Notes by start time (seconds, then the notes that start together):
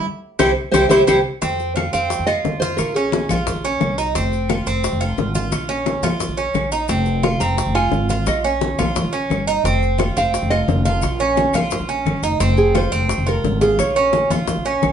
0.39 C2 E4 G4 C5 E5, low bongo, high conga, claves, maracas
0.71 C2 E4 G4 C5 E5, low bongo, high conga, claves, maracas
0.89 C2 E4 G4 C5 E5, low bongo, high conga, claves, maracas
1.07 C2 E4 G4 C5 E5, low bongo, high conga, claves, maracas
1.42 F2 C4, high bongo, high conga, maracas
1.59 high bongo, high conga, maracas
1.76 F4, high bongo, high conga, claves, maracas
1.93 F2 C4 F5, maracas
2.10 high bongo, high conga, maracas
2.19 F2
2.27 F4 D#5, high bongo, high conga, claves, maracas
2.45 F2, high bongo, low bongo, high conga, maracas
2.60 F4 C5, high bongo, high conga, maracas
2.77 A#1 A#4, high bongo, claves, maracas
2.94 C#4 G#4, high bongo, high conga, maracas
3.12 high bongo, high conga, maracas
3.29 A#1 F4, high conga, low conga, claves, maracas
3.47 high bongo, high conga, low conga, maracas
3.55 A#1
3.64 C#4, high bongo, high conga, maracas
3.81 C2, high bongo, low bongo, high conga, claves, maracas
3.98 D#4, high bongo, maracas
4.15 F1 C4, high bongo, high conga, maracas
4.32 high bongo, high conga, maracas
4.49 F4, high bongo, high conga, claves, maracas
4.67 F1 C4, maracas
4.84 high bongo, high conga, maracas
4.92 F1
5.01 F4, high bongo, high conga, claves, maracas
5.18 G#1, high bongo, low bongo, high conga, maracas
5.35 F4, high bongo, high conga, maracas
5.52 A#1, high bongo, high conga, claves, maracas
5.69 C#4, high bongo, high conga, maracas
5.86 high bongo, high conga, maracas
6.03 A#1 F4, high conga, low conga, claves, maracas
6.20 high bongo, high conga, low conga, maracas
6.29 A#1
6.37 C#4, high bongo, high conga, maracas
6.54 A#1, high bongo, low bongo, high conga, claves, maracas
6.72 D#4, high bongo, maracas
6.88 F1 C4, high bongo, high conga, maracas
7.06 high bongo, high conga, maracas
7.23 F4, high bongo, high conga, claves, maracas
7.40 F1 C4 A#5, maracas
7.58 high bongo, high conga, maracas
7.66 F1
7.75 F4 G#5, high bongo, high conga, claves, maracas
7.92 G#1, high bongo, low bongo, high conga, maracas
8.09 F4 F5, high bongo, high conga, maracas
8.26 A#1 D#5, high bongo, high conga, claves, maracas
8.44 C#4 C#5, high bongo, high conga, maracas
8.61 high bongo, high conga, maracas
8.79 A#1 F4, high conga, low conga, claves, maracas
8.96 high bongo, high conga, low conga, maracas
9.04 A#1
9.13 C#4, high bongo, high conga, maracas
9.30 G1, high bongo, low bongo, high conga, claves, maracas
9.47 D#4, high bongo, maracas
9.64 F1 C4, high bongo, high conga, maracas
9.82 high bongo, high conga, maracas
9.98 F4, high bongo, high conga, claves, maracas
10.16 F1 C4 F5, maracas
10.34 high bongo, high conga, maracas
10.42 F1
10.50 F4 D#5, high bongo, high conga, claves, maracas
10.68 F1, high bongo, low bongo, high conga, maracas
10.85 F4 F5, high bongo, high conga, maracas
11.02 A#1, high bongo, high conga, claves, maracas
11.19 C#4, high bongo, high conga, maracas
11.37 high bongo, high conga, maracas
11.54 A#1 F4, high conga, low conga, claves, maracas
11.71 high bongo, high conga, low conga, maracas
11.80 A#1
11.89 C#4, high bongo, high conga, maracas
12.06 G1, high bongo, low bongo, high conga, claves, maracas
12.22 F1 D#4, high bongo, maracas
12.40 F1 C4, high bongo, high conga, maracas
12.57 G#4, high bongo, high conga, maracas
12.75 F4 C5, high bongo, high conga, claves, maracas
12.92 F1 C4, maracas
13.09 high bongo, high conga, maracas
13.18 F1
13.27 F4 A#4, high bongo, high conga, claves, maracas
13.44 G#1, high bongo, low bongo, high conga, maracas
13.61 F4 G#4, high bongo, high conga, maracas
13.78 A#1 C#5, high bongo, claves, maracas
13.96 C#4, high bongo, high conga, maracas
14.13 high bongo, high conga, maracas
14.30 A#1 F4, high conga, low conga, claves, maracas
14.48 high bongo, high conga, low conga, maracas
14.57 A#1
14.65 C#4, high bongo, high conga, maracas
14.82 A#1, high bongo, low bongo, high conga, claves, maracas